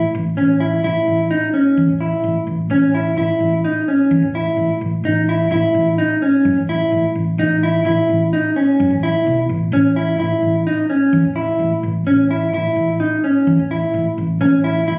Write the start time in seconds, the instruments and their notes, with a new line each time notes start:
0.15 fingered electric bass A1
0.37 fingered electric bass A1, clean electric guitar C#4
0.60 clean electric guitar E4
0.84 fingered electric bass A1, clean electric guitar E4
1.08 fingered electric bass A1
1.31 clean electric guitar D#4
1.54 clean electric guitar C#4
1.77 fingered electric bass E2
1.88 fingered electric bass A1
2.01 clean electric guitar E4
2.24 fingered electric bass A1
2.47 fingered electric bass A1
2.70 fingered electric bass A1, clean electric guitar C#4
2.94 clean electric guitar E4
3.17 fingered electric bass A1, clean electric guitar E4
3.40 fingered electric bass A1
3.65 clean electric guitar D#4
3.88 clean electric guitar C#4
4.11 fingered electric bass E2
4.22 fingered electric bass A1
4.35 clean electric guitar E4
4.57 fingered electric bass A1
4.81 fingered electric bass A1
5.04 fingered electric bass A1, clean electric guitar D#4
5.29 clean electric guitar E4
5.51 fingered electric bass A1, clean electric guitar E4
5.74 fingered electric bass A1
5.98 clean electric guitar D#4
6.22 clean electric guitar C#4
6.45 fingered electric bass F#2
6.56 fingered electric bass A1
6.69 clean electric guitar E4
6.92 fingered electric bass A1
7.15 fingered electric bass A1
7.38 fingered electric bass A1, clean electric guitar D#4
7.63 clean electric guitar E4
7.85 fingered electric bass A1, clean electric guitar E4
8.09 fingered electric bass A1
8.33 clean electric guitar D#4
8.56 clean electric guitar C#4
8.80 fingered electric bass F#2
8.91 fingered electric bass A1
9.03 clean electric guitar E4
9.27 fingered electric bass B1
9.49 fingered electric bass A1
9.72 fingered electric bass A1, clean electric guitar C#4
9.96 clean electric guitar E4
10.19 fingered electric bass A1, clean electric guitar E4
10.42 fingered electric bass A1
10.67 clean electric guitar D#4
10.90 clean electric guitar C#4
11.13 fingered electric bass E2
11.25 fingered electric bass A1
11.36 clean electric guitar E4
11.60 fingered electric bass A1
11.83 fingered electric bass A1
12.06 fingered electric bass A1, clean electric guitar C#4
12.31 clean electric guitar E4
12.53 fingered electric bass A1, clean electric guitar E4
12.76 fingered electric bass A1
13.00 clean electric guitar D#4
13.24 clean electric guitar C#4
13.47 fingered electric bass E2
13.59 fingered electric bass A1
13.71 clean electric guitar E4
13.94 fingered electric bass A1
14.18 fingered electric bass A1
14.41 fingered electric bass A1, clean electric guitar C#4
14.64 clean electric guitar E4
14.87 fingered electric bass A1, clean electric guitar E4